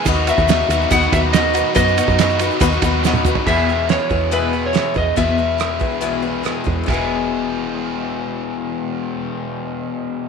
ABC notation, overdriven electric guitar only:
X:1
M:4/4
L:1/8
Q:1/4=140
K:E
V:1 name="Overdriven electric guitar"
[D,B,DF] [B,DF] [D,B,DF] [D,B,DF] [D,B,DF] [D,B,DF] [D,B,DF] [B,DF] | [D,B,DF] [B,DF] [D,B,DF] [D,B,DF] [D,B,DF] [D,B,DF] [D,B,DF] [B,DF] | [E,,B,,E,G,B,E]8 | [E,,B,,E,G,B,E]8 |
[E,,B,,E,G,B,G]8- | [E,,B,,E,G,B,G]8 |]